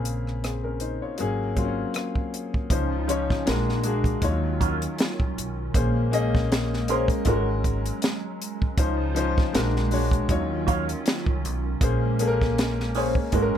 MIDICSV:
0, 0, Header, 1, 6, 480
1, 0, Start_track
1, 0, Tempo, 759494
1, 1710, Time_signature, 4, 2, 24, 8
1, 8581, End_track
2, 0, Start_track
2, 0, Title_t, "Clean electric guitar"
2, 0, Program_c, 0, 27
2, 2910, Note_on_c, 0, 54, 65
2, 2915, Note_on_c, 0, 61, 61
2, 2921, Note_on_c, 0, 65, 67
2, 3015, Note_off_c, 0, 54, 0
2, 3017, Note_off_c, 0, 61, 0
2, 3020, Note_off_c, 0, 65, 0
2, 4357, Note_on_c, 0, 61, 68
2, 4362, Note_on_c, 0, 68, 65
2, 4362, Note_on_c, 0, 72, 73
2, 4458, Note_off_c, 0, 61, 0
2, 4460, Note_off_c, 0, 68, 0
2, 4461, Note_off_c, 0, 72, 0
2, 4585, Note_on_c, 0, 61, 87
2, 4592, Note_on_c, 0, 66, 89
2, 4596, Note_on_c, 0, 70, 100
2, 4723, Note_off_c, 0, 61, 0
2, 4727, Note_off_c, 0, 66, 0
2, 4729, Note_off_c, 0, 70, 0
2, 6741, Note_on_c, 0, 66, 66
2, 6749, Note_on_c, 0, 73, 69
2, 6752, Note_on_c, 0, 77, 71
2, 6850, Note_off_c, 0, 66, 0
2, 6854, Note_off_c, 0, 73, 0
2, 6856, Note_off_c, 0, 77, 0
2, 8187, Note_on_c, 0, 61, 64
2, 8190, Note_on_c, 0, 68, 69
2, 8196, Note_on_c, 0, 72, 69
2, 8293, Note_off_c, 0, 61, 0
2, 8295, Note_off_c, 0, 68, 0
2, 8298, Note_off_c, 0, 72, 0
2, 8425, Note_on_c, 0, 61, 90
2, 8431, Note_on_c, 0, 66, 86
2, 8437, Note_on_c, 0, 70, 89
2, 8561, Note_off_c, 0, 61, 0
2, 8564, Note_off_c, 0, 66, 0
2, 8567, Note_off_c, 0, 70, 0
2, 8581, End_track
3, 0, Start_track
3, 0, Title_t, "Grand piano"
3, 0, Program_c, 1, 0
3, 0, Control_c, 1, 64, 127
3, 0, Note_on_c, 1, 49, 75
3, 0, Note_on_c, 1, 58, 64
3, 0, Note_on_c, 1, 60, 64
3, 0, Note_on_c, 1, 68, 78
3, 95, Note_off_c, 1, 49, 0
3, 97, Note_off_c, 1, 58, 0
3, 276, Note_off_c, 1, 68, 0
3, 276, Note_on_c, 1, 68, 55
3, 280, Note_off_c, 1, 60, 0
3, 280, Note_on_c, 1, 60, 41
3, 396, Note_off_c, 1, 68, 0
3, 399, Note_off_c, 1, 60, 0
3, 404, Note_on_c, 1, 70, 57
3, 409, Note_on_c, 1, 61, 47
3, 506, Note_off_c, 1, 70, 0
3, 509, Note_off_c, 1, 61, 0
3, 511, Note_on_c, 1, 72, 57
3, 514, Note_on_c, 1, 63, 50
3, 634, Note_off_c, 1, 72, 0
3, 635, Note_off_c, 1, 63, 0
3, 646, Note_on_c, 1, 73, 58
3, 649, Note_on_c, 1, 65, 45
3, 747, Note_on_c, 1, 54, 71
3, 752, Note_on_c, 1, 58, 69
3, 758, Note_on_c, 1, 61, 71
3, 759, Control_c, 1, 64, 0
3, 762, Note_on_c, 1, 68, 89
3, 871, Note_off_c, 1, 73, 0
3, 872, Note_off_c, 1, 65, 0
3, 879, Control_c, 1, 64, 127
3, 952, Note_off_c, 1, 54, 0
3, 955, Note_off_c, 1, 58, 0
3, 957, Note_off_c, 1, 61, 0
3, 960, Note_off_c, 1, 68, 0
3, 986, Note_on_c, 1, 54, 75
3, 990, Note_on_c, 1, 58, 69
3, 997, Note_on_c, 1, 60, 54
3, 998, Note_on_c, 1, 65, 88
3, 1035, Note_on_c, 1, 61, 70
3, 1037, Note_off_c, 1, 60, 0
3, 1599, Note_off_c, 1, 54, 0
3, 1601, Note_off_c, 1, 58, 0
3, 1605, Note_off_c, 1, 65, 0
3, 1624, Note_off_c, 1, 61, 0
3, 1706, Note_on_c, 1, 53, 73
3, 1711, Note_on_c, 1, 61, 66
3, 1716, Note_on_c, 1, 63, 59
3, 1717, Control_c, 1, 64, 0
3, 1720, Note_on_c, 1, 72, 80
3, 1820, Control_c, 1, 64, 127
3, 1911, Note_off_c, 1, 53, 0
3, 1914, Note_off_c, 1, 61, 0
3, 1917, Note_off_c, 1, 63, 0
3, 1919, Note_off_c, 1, 72, 0
3, 1944, Note_on_c, 1, 53, 85
3, 1948, Note_on_c, 1, 61, 79
3, 1954, Note_on_c, 1, 63, 74
3, 1960, Note_on_c, 1, 73, 95
3, 2187, Note_off_c, 1, 53, 0
3, 2187, Note_on_c, 1, 56, 89
3, 2189, Note_off_c, 1, 61, 0
3, 2192, Note_off_c, 1, 63, 0
3, 2192, Note_on_c, 1, 62, 74
3, 2195, Note_off_c, 1, 73, 0
3, 2195, Note_on_c, 1, 66, 72
3, 2198, Control_c, 1, 64, 0
3, 2201, Note_on_c, 1, 70, 88
3, 2325, Control_c, 1, 64, 127
3, 2392, Note_off_c, 1, 56, 0
3, 2395, Note_off_c, 1, 62, 0
3, 2396, Note_off_c, 1, 66, 0
3, 2399, Note_off_c, 1, 70, 0
3, 2423, Note_on_c, 1, 56, 73
3, 2429, Note_on_c, 1, 62, 73
3, 2434, Note_on_c, 1, 66, 73
3, 2439, Note_on_c, 1, 68, 84
3, 2666, Note_off_c, 1, 56, 0
3, 2667, Note_on_c, 1, 53, 65
3, 2669, Note_off_c, 1, 62, 0
3, 2671, Note_off_c, 1, 66, 0
3, 2672, Note_on_c, 1, 63, 77
3, 2674, Note_off_c, 1, 68, 0
3, 2677, Note_on_c, 1, 65, 74
3, 2679, Control_c, 1, 64, 0
3, 2683, Note_on_c, 1, 73, 85
3, 2708, Note_on_c, 1, 54, 77
3, 2713, Note_off_c, 1, 53, 0
3, 2785, Control_c, 1, 64, 127
3, 3480, Note_off_c, 1, 63, 0
3, 3482, Note_off_c, 1, 65, 0
3, 3485, Note_off_c, 1, 73, 0
3, 3498, Note_off_c, 1, 54, 0
3, 3629, Note_on_c, 1, 58, 68
3, 3633, Note_on_c, 1, 61, 63
3, 3637, Control_c, 1, 64, 0
3, 3638, Note_on_c, 1, 68, 62
3, 3643, Note_on_c, 1, 72, 84
3, 3739, Control_c, 1, 64, 127
3, 3833, Note_off_c, 1, 58, 0
3, 3835, Note_off_c, 1, 61, 0
3, 3837, Note_off_c, 1, 68, 0
3, 3840, Note_off_c, 1, 72, 0
3, 3863, Note_on_c, 1, 58, 87
3, 3870, Note_on_c, 1, 61, 78
3, 3874, Note_on_c, 1, 68, 86
3, 3879, Note_on_c, 1, 75, 105
3, 4274, Note_off_c, 1, 58, 0
3, 4278, Note_off_c, 1, 61, 0
3, 4279, Note_off_c, 1, 68, 0
3, 4282, Note_off_c, 1, 75, 0
3, 4346, Note_on_c, 1, 58, 74
3, 4353, Note_on_c, 1, 61, 68
3, 4356, Note_on_c, 1, 68, 68
3, 4363, Note_on_c, 1, 70, 92
3, 4584, Note_off_c, 1, 61, 0
3, 4588, Note_off_c, 1, 58, 0
3, 4589, Note_on_c, 1, 56, 76
3, 4593, Note_off_c, 1, 68, 0
3, 4593, Note_off_c, 1, 70, 0
3, 4594, Note_on_c, 1, 61, 69
3, 4599, Control_c, 1, 64, 0
3, 4599, Note_on_c, 1, 66, 73
3, 4603, Note_on_c, 1, 70, 89
3, 4722, Control_c, 1, 64, 127
3, 5398, Note_off_c, 1, 56, 0
3, 5400, Note_off_c, 1, 61, 0
3, 5403, Note_off_c, 1, 66, 0
3, 5405, Note_off_c, 1, 70, 0
3, 5545, Note_on_c, 1, 53, 74
3, 5551, Note_on_c, 1, 61, 69
3, 5555, Note_on_c, 1, 63, 67
3, 5558, Control_c, 1, 64, 0
3, 5558, Note_on_c, 1, 72, 85
3, 5675, Control_c, 1, 64, 127
3, 5751, Note_off_c, 1, 53, 0
3, 5754, Note_off_c, 1, 61, 0
3, 5756, Note_off_c, 1, 63, 0
3, 5758, Note_off_c, 1, 72, 0
3, 5780, Note_on_c, 1, 53, 95
3, 5787, Note_on_c, 1, 61, 82
3, 5790, Note_on_c, 1, 63, 78
3, 5796, Note_on_c, 1, 72, 104
3, 6022, Note_on_c, 1, 56, 83
3, 6025, Note_off_c, 1, 53, 0
3, 6028, Note_off_c, 1, 61, 0
3, 6028, Note_on_c, 1, 62, 81
3, 6030, Note_off_c, 1, 63, 0
3, 6033, Note_off_c, 1, 72, 0
3, 6033, Note_on_c, 1, 66, 76
3, 6037, Note_on_c, 1, 70, 92
3, 6038, Control_c, 1, 64, 0
3, 6162, Control_c, 1, 64, 127
3, 6230, Note_off_c, 1, 56, 0
3, 6233, Note_off_c, 1, 62, 0
3, 6235, Note_off_c, 1, 66, 0
3, 6237, Note_off_c, 1, 70, 0
3, 6265, Note_on_c, 1, 56, 80
3, 6270, Note_on_c, 1, 62, 73
3, 6274, Note_on_c, 1, 66, 76
3, 6280, Note_on_c, 1, 73, 86
3, 6504, Note_on_c, 1, 54, 76
3, 6507, Note_off_c, 1, 56, 0
3, 6510, Note_off_c, 1, 62, 0
3, 6510, Note_on_c, 1, 63, 78
3, 6511, Note_off_c, 1, 73, 0
3, 6512, Note_off_c, 1, 66, 0
3, 6516, Note_on_c, 1, 65, 71
3, 6519, Control_c, 1, 64, 0
3, 6521, Note_on_c, 1, 73, 90
3, 6645, Control_c, 1, 64, 127
3, 7316, Note_off_c, 1, 54, 0
3, 7319, Note_off_c, 1, 63, 0
3, 7321, Note_off_c, 1, 65, 0
3, 7324, Note_off_c, 1, 73, 0
3, 7466, Note_on_c, 1, 58, 74
3, 7471, Note_on_c, 1, 61, 67
3, 7476, Note_on_c, 1, 68, 69
3, 7477, Control_c, 1, 64, 0
3, 7482, Note_on_c, 1, 72, 81
3, 7575, Control_c, 1, 64, 127
3, 7672, Note_off_c, 1, 58, 0
3, 7674, Note_off_c, 1, 61, 0
3, 7676, Note_off_c, 1, 68, 0
3, 7680, Note_off_c, 1, 72, 0
3, 7705, Note_on_c, 1, 58, 87
3, 7709, Note_on_c, 1, 61, 81
3, 7713, Note_on_c, 1, 68, 78
3, 7717, Note_on_c, 1, 69, 79
3, 7758, Note_off_c, 1, 69, 0
3, 7758, Note_on_c, 1, 70, 102
3, 8115, Note_off_c, 1, 58, 0
3, 8117, Note_off_c, 1, 61, 0
3, 8119, Note_off_c, 1, 68, 0
3, 8141, Note_off_c, 1, 70, 0
3, 8184, Note_on_c, 1, 58, 74
3, 8190, Note_on_c, 1, 61, 68
3, 8195, Note_on_c, 1, 68, 65
3, 8200, Note_on_c, 1, 73, 79
3, 8422, Note_off_c, 1, 61, 0
3, 8426, Note_on_c, 1, 56, 83
3, 8427, Note_off_c, 1, 58, 0
3, 8431, Note_on_c, 1, 61, 71
3, 8432, Note_off_c, 1, 68, 0
3, 8435, Note_off_c, 1, 73, 0
3, 8435, Note_on_c, 1, 66, 69
3, 8438, Control_c, 1, 64, 0
3, 8440, Note_on_c, 1, 69, 68
3, 8479, Note_off_c, 1, 69, 0
3, 8484, Note_on_c, 1, 70, 88
3, 8559, Control_c, 1, 64, 127
3, 8581, Note_off_c, 1, 56, 0
3, 8581, Note_off_c, 1, 61, 0
3, 8581, Note_off_c, 1, 66, 0
3, 8581, Note_off_c, 1, 70, 0
3, 8581, End_track
4, 0, Start_track
4, 0, Title_t, "Analog synth pad"
4, 0, Program_c, 2, 89
4, 1703, Note_on_c, 2, 61, 74
4, 1706, Note_on_c, 2, 65, 81
4, 1707, Note_on_c, 2, 63, 70
4, 1708, Note_on_c, 2, 49, 78
4, 2181, Note_off_c, 2, 61, 0
4, 2183, Note_off_c, 2, 63, 0
4, 2183, Note_off_c, 2, 65, 0
4, 2184, Note_off_c, 2, 49, 0
4, 2184, Note_on_c, 2, 56, 84
4, 2186, Note_on_c, 2, 58, 74
4, 2187, Note_on_c, 2, 62, 80
4, 2662, Note_off_c, 2, 56, 0
4, 2663, Note_off_c, 2, 58, 0
4, 2663, Note_off_c, 2, 62, 0
4, 2668, Note_on_c, 2, 51, 89
4, 2671, Note_on_c, 2, 61, 71
4, 2673, Note_on_c, 2, 54, 86
4, 2673, Note_on_c, 2, 65, 80
4, 3619, Note_off_c, 2, 51, 0
4, 3622, Note_off_c, 2, 54, 0
4, 3622, Note_off_c, 2, 65, 0
4, 3631, Note_on_c, 2, 58, 79
4, 3632, Note_on_c, 2, 56, 77
4, 4581, Note_off_c, 2, 58, 0
4, 4588, Note_on_c, 2, 54, 81
4, 5525, Note_off_c, 2, 61, 0
4, 5532, Note_off_c, 2, 56, 0
4, 5539, Note_off_c, 2, 54, 0
4, 5542, Note_on_c, 2, 65, 87
4, 5543, Note_on_c, 2, 49, 83
4, 5544, Note_on_c, 2, 72, 76
4, 5545, Note_on_c, 2, 63, 74
4, 6018, Note_on_c, 2, 56, 79
4, 6018, Note_on_c, 2, 58, 73
4, 6018, Note_on_c, 2, 62, 87
4, 6021, Note_off_c, 2, 49, 0
4, 6021, Note_off_c, 2, 65, 0
4, 6022, Note_off_c, 2, 63, 0
4, 6022, Note_off_c, 2, 72, 0
4, 6494, Note_on_c, 2, 51, 85
4, 6494, Note_on_c, 2, 61, 81
4, 6495, Note_on_c, 2, 54, 92
4, 6495, Note_on_c, 2, 65, 76
4, 6499, Note_off_c, 2, 56, 0
4, 6499, Note_off_c, 2, 58, 0
4, 6499, Note_off_c, 2, 62, 0
4, 7452, Note_off_c, 2, 51, 0
4, 7452, Note_off_c, 2, 61, 0
4, 7453, Note_off_c, 2, 54, 0
4, 7453, Note_off_c, 2, 65, 0
4, 7462, Note_on_c, 2, 56, 86
4, 7462, Note_on_c, 2, 58, 73
4, 7462, Note_on_c, 2, 61, 97
4, 8416, Note_off_c, 2, 58, 0
4, 8416, Note_off_c, 2, 61, 0
4, 8428, Note_on_c, 2, 61, 92
4, 8432, Note_on_c, 2, 54, 88
4, 8581, Note_off_c, 2, 54, 0
4, 8581, Note_off_c, 2, 56, 0
4, 8581, Note_off_c, 2, 61, 0
4, 8581, End_track
5, 0, Start_track
5, 0, Title_t, "Upright bass"
5, 0, Program_c, 3, 32
5, 0, Note_on_c, 3, 34, 93
5, 615, Note_off_c, 3, 34, 0
5, 761, Note_on_c, 3, 32, 89
5, 1154, Note_off_c, 3, 32, 0
5, 1711, Note_on_c, 3, 37, 108
5, 2108, Note_off_c, 3, 37, 0
5, 2200, Note_on_c, 3, 34, 103
5, 2593, Note_off_c, 3, 34, 0
5, 2670, Note_on_c, 3, 39, 105
5, 3067, Note_off_c, 3, 39, 0
5, 3289, Note_on_c, 3, 36, 80
5, 3376, Note_off_c, 3, 36, 0
5, 3400, Note_on_c, 3, 35, 81
5, 3594, Note_off_c, 3, 35, 0
5, 3636, Note_on_c, 3, 34, 107
5, 4457, Note_off_c, 3, 34, 0
5, 4590, Note_on_c, 3, 32, 105
5, 4987, Note_off_c, 3, 32, 0
5, 5551, Note_on_c, 3, 37, 103
5, 5948, Note_off_c, 3, 37, 0
5, 6036, Note_on_c, 3, 34, 108
5, 6431, Note_off_c, 3, 34, 0
5, 6507, Note_on_c, 3, 39, 106
5, 6906, Note_off_c, 3, 39, 0
5, 7123, Note_on_c, 3, 36, 84
5, 7237, Note_off_c, 3, 36, 0
5, 7237, Note_on_c, 3, 35, 84
5, 7433, Note_off_c, 3, 35, 0
5, 7469, Note_on_c, 3, 34, 106
5, 8294, Note_off_c, 3, 34, 0
5, 8427, Note_on_c, 3, 32, 96
5, 8536, Note_off_c, 3, 32, 0
5, 8581, End_track
6, 0, Start_track
6, 0, Title_t, "Drums"
6, 33, Note_on_c, 9, 42, 58
6, 96, Note_off_c, 9, 42, 0
6, 173, Note_on_c, 9, 37, 31
6, 236, Note_off_c, 9, 37, 0
6, 277, Note_on_c, 9, 42, 62
6, 281, Note_on_c, 9, 37, 83
6, 341, Note_off_c, 9, 42, 0
6, 345, Note_off_c, 9, 37, 0
6, 505, Note_on_c, 9, 42, 50
6, 569, Note_off_c, 9, 42, 0
6, 744, Note_on_c, 9, 42, 58
6, 807, Note_off_c, 9, 42, 0
6, 990, Note_on_c, 9, 36, 78
6, 990, Note_on_c, 9, 42, 50
6, 1053, Note_off_c, 9, 36, 0
6, 1053, Note_off_c, 9, 42, 0
6, 1227, Note_on_c, 9, 42, 60
6, 1239, Note_on_c, 9, 37, 87
6, 1290, Note_off_c, 9, 42, 0
6, 1303, Note_off_c, 9, 37, 0
6, 1362, Note_on_c, 9, 36, 73
6, 1425, Note_off_c, 9, 36, 0
6, 1478, Note_on_c, 9, 42, 61
6, 1541, Note_off_c, 9, 42, 0
6, 1607, Note_on_c, 9, 36, 69
6, 1670, Note_off_c, 9, 36, 0
6, 1707, Note_on_c, 9, 36, 99
6, 1708, Note_on_c, 9, 42, 89
6, 1770, Note_off_c, 9, 36, 0
6, 1771, Note_off_c, 9, 42, 0
6, 1953, Note_on_c, 9, 42, 65
6, 2016, Note_off_c, 9, 42, 0
6, 2087, Note_on_c, 9, 38, 34
6, 2088, Note_on_c, 9, 36, 96
6, 2151, Note_off_c, 9, 36, 0
6, 2151, Note_off_c, 9, 38, 0
6, 2192, Note_on_c, 9, 42, 83
6, 2196, Note_on_c, 9, 38, 107
6, 2256, Note_off_c, 9, 42, 0
6, 2259, Note_off_c, 9, 38, 0
6, 2331, Note_on_c, 9, 38, 35
6, 2394, Note_off_c, 9, 38, 0
6, 2424, Note_on_c, 9, 42, 64
6, 2487, Note_off_c, 9, 42, 0
6, 2554, Note_on_c, 9, 36, 91
6, 2562, Note_on_c, 9, 42, 42
6, 2618, Note_off_c, 9, 36, 0
6, 2625, Note_off_c, 9, 42, 0
6, 2666, Note_on_c, 9, 36, 86
6, 2666, Note_on_c, 9, 42, 73
6, 2729, Note_off_c, 9, 36, 0
6, 2729, Note_off_c, 9, 42, 0
6, 2912, Note_on_c, 9, 36, 92
6, 2916, Note_on_c, 9, 42, 57
6, 2976, Note_off_c, 9, 36, 0
6, 2979, Note_off_c, 9, 42, 0
6, 3046, Note_on_c, 9, 42, 52
6, 3109, Note_off_c, 9, 42, 0
6, 3151, Note_on_c, 9, 42, 74
6, 3163, Note_on_c, 9, 38, 108
6, 3214, Note_off_c, 9, 42, 0
6, 3226, Note_off_c, 9, 38, 0
6, 3284, Note_on_c, 9, 36, 91
6, 3348, Note_off_c, 9, 36, 0
6, 3403, Note_on_c, 9, 42, 68
6, 3466, Note_off_c, 9, 42, 0
6, 3630, Note_on_c, 9, 36, 106
6, 3632, Note_on_c, 9, 42, 92
6, 3693, Note_off_c, 9, 36, 0
6, 3695, Note_off_c, 9, 42, 0
6, 3875, Note_on_c, 9, 42, 73
6, 3938, Note_off_c, 9, 42, 0
6, 4011, Note_on_c, 9, 36, 98
6, 4014, Note_on_c, 9, 38, 33
6, 4074, Note_off_c, 9, 36, 0
6, 4077, Note_off_c, 9, 38, 0
6, 4119, Note_on_c, 9, 42, 69
6, 4123, Note_on_c, 9, 38, 103
6, 4183, Note_off_c, 9, 42, 0
6, 4186, Note_off_c, 9, 38, 0
6, 4255, Note_on_c, 9, 38, 35
6, 4319, Note_off_c, 9, 38, 0
6, 4350, Note_on_c, 9, 42, 64
6, 4413, Note_off_c, 9, 42, 0
6, 4476, Note_on_c, 9, 36, 94
6, 4484, Note_on_c, 9, 42, 43
6, 4539, Note_off_c, 9, 36, 0
6, 4548, Note_off_c, 9, 42, 0
6, 4582, Note_on_c, 9, 42, 70
6, 4586, Note_on_c, 9, 36, 91
6, 4645, Note_off_c, 9, 42, 0
6, 4649, Note_off_c, 9, 36, 0
6, 4831, Note_on_c, 9, 36, 91
6, 4833, Note_on_c, 9, 42, 57
6, 4894, Note_off_c, 9, 36, 0
6, 4896, Note_off_c, 9, 42, 0
6, 4965, Note_on_c, 9, 42, 52
6, 5028, Note_off_c, 9, 42, 0
6, 5069, Note_on_c, 9, 42, 78
6, 5081, Note_on_c, 9, 38, 102
6, 5132, Note_off_c, 9, 42, 0
6, 5144, Note_off_c, 9, 38, 0
6, 5319, Note_on_c, 9, 42, 68
6, 5382, Note_off_c, 9, 42, 0
6, 5446, Note_on_c, 9, 36, 90
6, 5510, Note_off_c, 9, 36, 0
6, 5546, Note_on_c, 9, 36, 115
6, 5547, Note_on_c, 9, 42, 90
6, 5609, Note_off_c, 9, 36, 0
6, 5610, Note_off_c, 9, 42, 0
6, 5790, Note_on_c, 9, 42, 71
6, 5853, Note_off_c, 9, 42, 0
6, 5927, Note_on_c, 9, 36, 101
6, 5927, Note_on_c, 9, 38, 36
6, 5990, Note_off_c, 9, 36, 0
6, 5991, Note_off_c, 9, 38, 0
6, 6033, Note_on_c, 9, 42, 77
6, 6037, Note_on_c, 9, 38, 101
6, 6096, Note_off_c, 9, 42, 0
6, 6100, Note_off_c, 9, 38, 0
6, 6168, Note_on_c, 9, 38, 37
6, 6231, Note_off_c, 9, 38, 0
6, 6264, Note_on_c, 9, 46, 46
6, 6327, Note_off_c, 9, 46, 0
6, 6393, Note_on_c, 9, 36, 89
6, 6403, Note_on_c, 9, 42, 45
6, 6456, Note_off_c, 9, 36, 0
6, 6466, Note_off_c, 9, 42, 0
6, 6503, Note_on_c, 9, 36, 90
6, 6503, Note_on_c, 9, 42, 66
6, 6566, Note_off_c, 9, 36, 0
6, 6566, Note_off_c, 9, 42, 0
6, 6748, Note_on_c, 9, 36, 88
6, 6750, Note_on_c, 9, 42, 58
6, 6811, Note_off_c, 9, 36, 0
6, 6813, Note_off_c, 9, 42, 0
6, 6883, Note_on_c, 9, 42, 52
6, 6946, Note_off_c, 9, 42, 0
6, 6988, Note_on_c, 9, 42, 74
6, 7001, Note_on_c, 9, 38, 111
6, 7051, Note_off_c, 9, 42, 0
6, 7064, Note_off_c, 9, 38, 0
6, 7119, Note_on_c, 9, 36, 91
6, 7182, Note_off_c, 9, 36, 0
6, 7236, Note_on_c, 9, 42, 66
6, 7300, Note_off_c, 9, 42, 0
6, 7464, Note_on_c, 9, 36, 110
6, 7464, Note_on_c, 9, 42, 92
6, 7527, Note_off_c, 9, 36, 0
6, 7528, Note_off_c, 9, 42, 0
6, 7706, Note_on_c, 9, 42, 68
6, 7769, Note_off_c, 9, 42, 0
6, 7845, Note_on_c, 9, 38, 33
6, 7846, Note_on_c, 9, 36, 93
6, 7908, Note_off_c, 9, 38, 0
6, 7910, Note_off_c, 9, 36, 0
6, 7953, Note_on_c, 9, 42, 76
6, 7957, Note_on_c, 9, 38, 104
6, 8017, Note_off_c, 9, 42, 0
6, 8020, Note_off_c, 9, 38, 0
6, 8089, Note_on_c, 9, 38, 37
6, 8152, Note_off_c, 9, 38, 0
6, 8182, Note_on_c, 9, 46, 44
6, 8245, Note_off_c, 9, 46, 0
6, 8312, Note_on_c, 9, 36, 88
6, 8375, Note_off_c, 9, 36, 0
6, 8419, Note_on_c, 9, 42, 71
6, 8422, Note_on_c, 9, 36, 89
6, 8483, Note_off_c, 9, 42, 0
6, 8486, Note_off_c, 9, 36, 0
6, 8581, End_track
0, 0, End_of_file